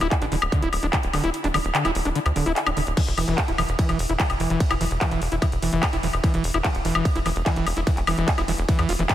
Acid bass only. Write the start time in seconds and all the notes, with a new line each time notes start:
0.01 E4
0.22 D4
0.32 D3
0.52 D3
0.62 E4
0.83 D4
0.93 D3
1.13 D3
1.24 E4
1.44 D4
1.54 D3
1.75 D3
1.85 E4
2.05 D4
2.15 D3
2.36 D3
2.46 E4
2.67 D4
2.77 D3
2.97 E3
3.18 E3
3.28 E3
3.48 E4
3.58 E3
3.79 E3
3.89 E3
4.09 E4
4.20 E3
4.40 E3
4.50 E3
4.71 E4
4.81 E3
5.01 E3
5.11 E3
5.32 E4
5.42 E3
5.62 E3
5.73 E3
5.93 E4
6.03 E3
6.24 E3
6.34 E3
6.54 E4
6.64 E3
6.85 E3
6.95 E3
7.16 E4
7.26 E3
7.46 E3
7.56 E3
7.77 E4
7.87 E3
8.07 E3
8.18 E3
8.38 E4
8.48 E3
8.69 E3
8.79 E3
8.89 F4
8.99 E3
9.09 E3